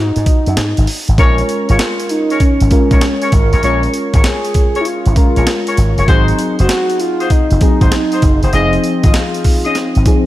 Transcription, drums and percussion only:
0.16 closed hi-hat
0.26 kick, closed hi-hat
0.46 closed hi-hat
0.57 snare, closed hi-hat
0.77 closed hi-hat
0.87 open hi-hat
1.08 closed hi-hat
1.18 kick, closed hi-hat
1.38 closed hi-hat
1.49 closed hi-hat
1.69 closed hi-hat
1.79 snare, closed hi-hat
2.00 closed hi-hat
2.09 closed hi-hat
2.30 closed hi-hat
2.40 kick, closed hi-hat
2.60 closed hi-hat
2.71 kick, closed hi-hat
2.91 kick, closed hi-hat
3.01 snare, closed hi-hat
3.22 closed hi-hat
3.32 kick, closed hi-hat
3.53 closed hi-hat
3.63 closed hi-hat
3.83 closed hi-hat
3.94 closed hi-hat
4.14 kick, closed hi-hat
4.24 snare, closed hi-hat
4.45 closed hi-hat
4.54 kick, closed hi-hat
4.75 closed hi-hat
4.85 closed hi-hat
5.06 closed hi-hat
5.16 kick, closed hi-hat
5.36 closed hi-hat
5.47 snare, closed hi-hat
5.67 closed hi-hat
5.77 closed hi-hat
5.98 closed hi-hat
6.08 kick, closed hi-hat
6.28 closed hi-hat
6.39 closed hi-hat
6.59 closed hi-hat
6.69 snare, closed hi-hat
6.90 closed hi-hat
7.00 closed hi-hat
7.20 closed hi-hat
7.30 kick, closed hi-hat
7.51 closed hi-hat
7.61 kick, closed hi-hat
7.81 kick, closed hi-hat
7.92 snare, closed hi-hat
8.12 closed hi-hat
8.22 kick, closed hi-hat
8.43 closed hi-hat
8.53 closed hi-hat
8.73 closed hi-hat
8.84 closed hi-hat
9.03 kick, closed hi-hat
9.14 snare, closed hi-hat
9.34 closed hi-hat
9.44 kick, open hi-hat
9.65 closed hi-hat
9.75 snare, closed hi-hat
9.95 closed hi-hat
10.06 kick, closed hi-hat

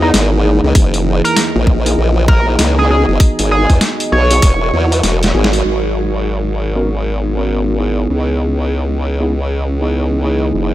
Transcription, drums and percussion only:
0.14 snare, closed hi-hat
0.75 kick, closed hi-hat
0.94 closed hi-hat
1.25 closed hi-hat
1.37 snare, closed hi-hat
1.67 kick
1.86 closed hi-hat
2.28 kick
2.59 snare, closed hi-hat
3.20 kick, closed hi-hat
3.39 closed hi-hat
3.70 kick, closed hi-hat
3.81 snare, closed hi-hat
4.00 closed hi-hat
4.31 closed hi-hat
4.42 kick, closed hi-hat
4.92 closed hi-hat
5.03 snare, closed hi-hat
5.23 snare, closed hi-hat
5.44 snare
5.53 closed hi-hat

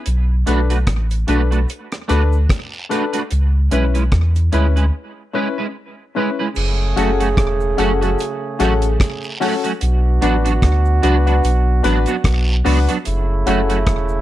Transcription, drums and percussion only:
0.06 closed hi-hat, cabasa
0.47 closed hi-hat, cabasa
0.70 closed hi-hat, cabasa
0.87 kick, cross-stick, closed hi-hat
1.10 closed hi-hat, cabasa
1.28 closed hi-hat
1.52 closed hi-hat
1.69 closed hi-hat, cabasa
1.92 cross-stick, closed hi-hat
2.09 cross-stick, closed hi-hat, cabasa
2.33 cabasa
2.49 kick, cross-stick, closed hi-hat, long guiro
2.73 cabasa
2.91 closed hi-hat, cabasa
3.13 closed hi-hat
3.31 closed hi-hat, cabasa
3.71 closed hi-hat, cabasa
3.95 closed hi-hat, cabasa
4.12 kick, cross-stick, closed hi-hat
4.35 closed hi-hat, cabasa
4.53 closed hi-hat
4.77 closed hi-hat
6.55 crash, cabasa
6.97 closed hi-hat, cabasa
7.21 closed hi-hat, cabasa
7.37 kick, cross-stick, closed hi-hat
7.60 cabasa
7.78 closed hi-hat
8.02 closed hi-hat
8.19 closed hi-hat, cabasa
8.60 cross-stick, closed hi-hat, cabasa
8.82 closed hi-hat, cabasa
9.00 kick, cross-stick, closed hi-hat, long guiro
9.23 cabasa
9.41 open hi-hat, cabasa
9.64 closed hi-hat
9.81 closed hi-hat, cabasa
10.22 closed hi-hat, cabasa
10.46 closed hi-hat, cabasa
10.62 kick, cross-stick, closed hi-hat
10.85 cabasa
11.03 closed hi-hat
11.27 closed hi-hat
11.44 closed hi-hat, cabasa
11.84 cross-stick, closed hi-hat, cabasa
12.06 closed hi-hat, cabasa
12.24 kick, cross-stick, closed hi-hat, long guiro
12.47 cabasa
12.66 open hi-hat, cabasa
12.89 closed hi-hat
13.05 closed hi-hat, cabasa
13.46 closed hi-hat, cabasa
13.70 closed hi-hat, cabasa
13.87 kick, cross-stick, closed hi-hat
14.09 cabasa

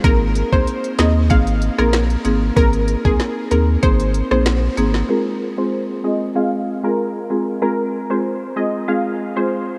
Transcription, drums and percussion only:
0.04 kick, closed hi-hat
0.35 closed hi-hat
0.53 kick
0.67 closed hi-hat
0.84 closed hi-hat
0.99 finger snap, snare, closed hi-hat
1.30 kick, closed hi-hat
1.47 closed hi-hat
1.62 closed hi-hat
1.79 cross-stick
1.93 finger snap, snare, closed hi-hat
2.10 closed hi-hat
2.25 closed hi-hat
2.57 kick, closed hi-hat
2.73 closed hi-hat
2.88 closed hi-hat
3.05 kick
3.20 snare, closed hi-hat
3.51 closed hi-hat
3.83 kick, closed hi-hat
4.00 closed hi-hat
4.14 closed hi-hat
4.31 cross-stick
4.46 finger snap, snare, closed hi-hat
4.77 closed hi-hat
4.94 snare

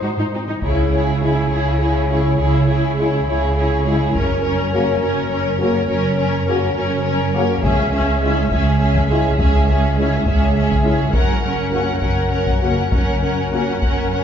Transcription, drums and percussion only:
0.61 taiko
4.15 taiko
7.63 taiko
8.51 taiko
8.95 taiko
9.38 taiko
10.26 taiko
10.70 taiko
11.14 taiko
12.02 taiko
12.47 taiko
12.92 taiko
13.82 taiko

